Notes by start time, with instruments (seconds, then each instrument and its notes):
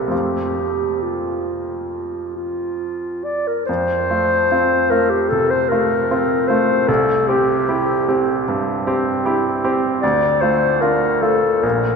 Already playing: grand piano C2 A#3 C4 E4, clarinet G4
0.08 grand piano F2 A3 C4 F4, clarinet G4
1.02 clarinet F4
2.36 clarinet F4
3.24 clarinet D5
3.47 clarinet A#4
3.66 grand piano F2, clarinet C5
4.10 grand piano A3 F4
4.51 grand piano C4 F4
4.90 grand piano A3 F4, clarinet A#4
5.10 clarinet G4
5.29 grand piano C3, clarinet A4
5.50 clarinet C5
5.69 grand piano A3 F4, clarinet A#4
6.11 grand piano C4 F4
6.48 grand piano A3 F4, clarinet C5
6.88 grand piano C2, clarinet A4
7.28 grand piano C4 G4, clarinet G4
7.68 grand piano E4 G4
8.09 grand piano C4 G4
8.48 grand piano G2
8.87 grand piano C4 G4
9.25 grand piano E4 G4
9.64 grand piano C4 G4
10.02 grand piano D2, clarinet D5
10.41 grand piano A3 F4, clarinet C5
10.81 grand piano D4 F4, clarinet A#4
11.22 grand piano A3 F4, clarinet A4
11.63 grand piano A#1, clarinet A#4